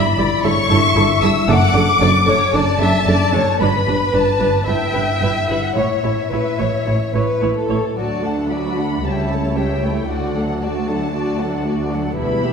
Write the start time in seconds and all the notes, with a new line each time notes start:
Already playing: B5
0.18 G1 G2 E4 D5
0.44 G1 G2 E4 A4 C#5 C#6
0.70 G1 G2 E4 A4 E5
0.95 G1 G2 E4 A4
1.22 G1 G2 E4 A4 E6
1.47 F#1 F#2 D4 A4 F#5 D6
1.74 F#1 F#2 D4 A4
2.00 F#1 F#2 D4 A4 D5
2.26 F#1 F#2 D4 A4 C#5
2.53 F#1 F#2 D4 A4 D5 A5
2.80 F#1 F#2 D4 A4 E5
3.07 F#1 F#2 D4 A4 D5
3.33 F#1 F#2 D4 A4 C#5
3.60 G1 G2 D4 B4 B5
3.86 G1 G2 D4 B4
4.13 G1 G2 D4 B4 A5
4.40 G1 G2 D4 B4
4.67 G1 G2 E4 B4 E5 G5
4.94 G1 G2 E4 B4
5.21 G1 G2 E4 B4
5.48 G1 G2 E4 B4 F#5
5.76 A1 A2 E4 C#5 E5
6.03 A1 A2 E4 C#5
6.31 A1 A2 E4 B4 C#5
6.59 A1 A2 E4 C#5
6.86 A1 A2 E4 C#5
7.14 A1 A2 E4 B4 C#5
7.42 A1 A2 E4 C#5
7.57 A4
7.69 A1 A2 E4 C#5
7.97 D2 F#3 F#4 D5 A5
8.23 A3 D4 A4 F#5
8.50 F#3 F#4 D5 B5
8.77 A3 D4 A4 F#5
9.03 C#2 G3 G4 C#5 E5 A5
9.10 G5
9.18 A5
9.30 A3 E4 A4 C#5
9.57 G3 G4 C#5 E5 G5
9.83 A3 E4 A4 C#5
10.09 D2 A3 F#4 D5 F#5
10.36 F#3 D4 A4 F#5
10.62 A3 F#4 D5 A5
10.88 F#3 D4 A4 F#5
11.15 A3 F#4 D5
11.40 F#3 D4 A4 F#5
11.66 A3 F#4 D5
11.92 F#3 D4 A4 F#5
12.17 E1 E2 G3 E4 B4 B5
12.43 B3 G4 E5